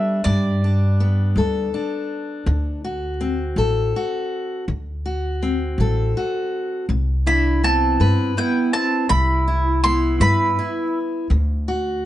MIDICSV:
0, 0, Header, 1, 5, 480
1, 0, Start_track
1, 0, Tempo, 736196
1, 168, Time_signature, 6, 3, 24, 8
1, 7859, End_track
2, 0, Start_track
2, 0, Title_t, "Mandolin"
2, 0, Program_c, 0, 25
2, 0, Note_on_c, 0, 76, 95
2, 155, Note_off_c, 0, 76, 0
2, 157, Note_on_c, 0, 74, 81
2, 1097, Note_off_c, 0, 74, 0
2, 4741, Note_on_c, 0, 83, 89
2, 4981, Note_off_c, 0, 83, 0
2, 4983, Note_on_c, 0, 81, 84
2, 5430, Note_off_c, 0, 81, 0
2, 5464, Note_on_c, 0, 79, 75
2, 5680, Note_off_c, 0, 79, 0
2, 5694, Note_on_c, 0, 81, 88
2, 5915, Note_off_c, 0, 81, 0
2, 5929, Note_on_c, 0, 83, 101
2, 6411, Note_off_c, 0, 83, 0
2, 6413, Note_on_c, 0, 84, 104
2, 6635, Note_off_c, 0, 84, 0
2, 6656, Note_on_c, 0, 83, 97
2, 7167, Note_off_c, 0, 83, 0
2, 7859, End_track
3, 0, Start_track
3, 0, Title_t, "Steel-string acoustic guitar"
3, 0, Program_c, 1, 25
3, 0, Note_on_c, 1, 59, 61
3, 0, Note_on_c, 1, 62, 62
3, 0, Note_on_c, 1, 69, 67
3, 139, Note_off_c, 1, 59, 0
3, 169, Note_on_c, 1, 43, 81
3, 188, Note_off_c, 1, 69, 0
3, 415, Note_off_c, 1, 62, 0
3, 417, Note_on_c, 1, 62, 58
3, 601, Note_off_c, 1, 43, 0
3, 654, Note_on_c, 1, 59, 56
3, 894, Note_on_c, 1, 55, 63
3, 899, Note_on_c, 1, 69, 70
3, 1132, Note_off_c, 1, 62, 0
3, 1135, Note_on_c, 1, 62, 63
3, 1323, Note_off_c, 1, 55, 0
3, 1583, Note_off_c, 1, 59, 0
3, 1611, Note_on_c, 1, 50, 83
3, 1852, Note_off_c, 1, 62, 0
3, 1854, Note_on_c, 1, 66, 61
3, 2042, Note_off_c, 1, 50, 0
3, 2091, Note_on_c, 1, 60, 58
3, 2331, Note_off_c, 1, 69, 0
3, 2331, Note_on_c, 1, 54, 67
3, 2334, Note_on_c, 1, 69, 68
3, 2572, Note_off_c, 1, 66, 0
3, 2583, Note_on_c, 1, 66, 67
3, 2762, Note_off_c, 1, 54, 0
3, 3022, Note_off_c, 1, 69, 0
3, 3027, Note_off_c, 1, 66, 0
3, 3053, Note_on_c, 1, 50, 75
3, 3072, Note_off_c, 1, 60, 0
3, 3296, Note_on_c, 1, 66, 55
3, 3483, Note_off_c, 1, 50, 0
3, 3537, Note_on_c, 1, 60, 60
3, 3781, Note_on_c, 1, 54, 67
3, 3785, Note_on_c, 1, 69, 71
3, 4013, Note_off_c, 1, 66, 0
3, 4022, Note_on_c, 1, 66, 62
3, 4207, Note_off_c, 1, 54, 0
3, 4467, Note_off_c, 1, 66, 0
3, 4468, Note_off_c, 1, 69, 0
3, 4497, Note_on_c, 1, 48, 82
3, 4736, Note_on_c, 1, 64, 57
3, 4925, Note_off_c, 1, 48, 0
3, 4976, Note_off_c, 1, 60, 0
3, 4978, Note_on_c, 1, 59, 55
3, 5214, Note_on_c, 1, 55, 65
3, 5220, Note_on_c, 1, 71, 72
3, 5450, Note_off_c, 1, 64, 0
3, 5458, Note_on_c, 1, 64, 62
3, 5644, Note_off_c, 1, 55, 0
3, 5905, Note_off_c, 1, 59, 0
3, 5905, Note_off_c, 1, 64, 0
3, 5906, Note_off_c, 1, 71, 0
3, 5933, Note_on_c, 1, 48, 80
3, 6178, Note_on_c, 1, 64, 57
3, 6364, Note_off_c, 1, 48, 0
3, 6423, Note_on_c, 1, 59, 62
3, 6656, Note_on_c, 1, 55, 68
3, 6661, Note_on_c, 1, 71, 69
3, 6894, Note_off_c, 1, 64, 0
3, 6903, Note_on_c, 1, 64, 65
3, 7085, Note_off_c, 1, 55, 0
3, 7347, Note_off_c, 1, 71, 0
3, 7348, Note_off_c, 1, 59, 0
3, 7348, Note_off_c, 1, 64, 0
3, 7375, Note_on_c, 1, 50, 84
3, 7616, Note_on_c, 1, 66, 62
3, 7805, Note_off_c, 1, 50, 0
3, 7859, Note_off_c, 1, 66, 0
3, 7859, End_track
4, 0, Start_track
4, 0, Title_t, "Pedal steel guitar"
4, 0, Program_c, 2, 26
4, 0, Note_on_c, 2, 55, 74
4, 137, Note_off_c, 2, 55, 0
4, 161, Note_on_c, 2, 55, 70
4, 1099, Note_off_c, 2, 55, 0
4, 4751, Note_on_c, 2, 62, 73
4, 4964, Note_off_c, 2, 62, 0
4, 4990, Note_on_c, 2, 60, 73
4, 5434, Note_off_c, 2, 60, 0
4, 5463, Note_on_c, 2, 59, 63
4, 5680, Note_off_c, 2, 59, 0
4, 5705, Note_on_c, 2, 60, 65
4, 5921, Note_off_c, 2, 60, 0
4, 5940, Note_on_c, 2, 64, 92
4, 6389, Note_off_c, 2, 64, 0
4, 6413, Note_on_c, 2, 64, 83
4, 6632, Note_off_c, 2, 64, 0
4, 6640, Note_on_c, 2, 64, 78
4, 7159, Note_off_c, 2, 64, 0
4, 7859, End_track
5, 0, Start_track
5, 0, Title_t, "Upright bass"
5, 0, Program_c, 3, 32
5, 166, Note_on_c, 3, 43, 96
5, 861, Note_off_c, 3, 43, 0
5, 884, Note_on_c, 3, 38, 90
5, 1114, Note_off_c, 3, 38, 0
5, 1606, Note_on_c, 3, 38, 102
5, 2302, Note_off_c, 3, 38, 0
5, 2322, Note_on_c, 3, 33, 95
5, 2553, Note_off_c, 3, 33, 0
5, 3051, Note_on_c, 3, 38, 95
5, 3744, Note_off_c, 3, 38, 0
5, 3767, Note_on_c, 3, 33, 91
5, 3996, Note_off_c, 3, 33, 0
5, 4491, Note_on_c, 3, 36, 95
5, 5184, Note_off_c, 3, 36, 0
5, 5217, Note_on_c, 3, 43, 87
5, 5441, Note_off_c, 3, 43, 0
5, 5933, Note_on_c, 3, 36, 102
5, 6626, Note_off_c, 3, 36, 0
5, 6651, Note_on_c, 3, 43, 91
5, 6878, Note_off_c, 3, 43, 0
5, 7368, Note_on_c, 3, 38, 107
5, 7859, Note_off_c, 3, 38, 0
5, 7859, End_track
0, 0, End_of_file